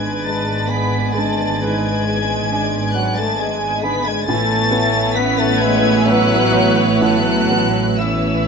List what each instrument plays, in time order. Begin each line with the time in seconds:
Already playing: double bass section G#1, grand piano G#2 G#3 D4, cello section G#2, french horn section G#3, viola section G#3 B3, cor anglais B4, violin section B4 D5 G#6, flute section G#5
0.22 french horn section G#3, flute section A5, violin section A6
0.27 grand piano B4
0.68 french horn section B3, cor anglais G#5, flute section B5, violin section B6
0.73 grand piano G#3
1.13 french horn section G#3, violin section A6
1.17 grand piano D3, flute section A5
1.59 grand piano G#2, french horn section G#3, cor anglais B4, flute section G#5, violin section G#6
2.07 grand piano G#3, cor anglais G#5
2.51 grand piano D4
2.94 french horn section F#3, grand piano B4, flute section F#5, violin section F#6
3.16 french horn section A3, flute section A5, violin section A6
3.39 french horn section G#3, grand piano G#3, flute section G#5, violin section G#6
3.82 grand piano D3, french horn section B3, flute section B5, violin section B6
4.05 french horn section G#3, flute section G#5, violin section G#6
4.26 double bass section A1, cello section A2, grand piano A2, french horn section A3, viola section B3 E4, violin section B4 C#5 A6
4.30 flute section A5
4.71 grand piano B3
5.14 french horn section B3, grand piano C#4, cor anglais F#5, flute section B5, violin section B6
5.38 french horn section A3, flute section A5, violin section A6
5.59 french horn section G#3, grand piano B4, flute section G#5, violin section G#6
6.05 french horn section F#3, grand piano B3, cor anglais E5, flute section F#5, violin section F#6
6.53 grand piano E3, cor anglais C#5
7.00 grand piano A2, french horn section F#3, flute section F#5, cor anglais A5, violin section F#6
7.51 grand piano B3
7.99 french horn section E3, viola section B3 E4, grand piano C#4, violin section B4 C#5 E6, flute section E5, cor anglais E5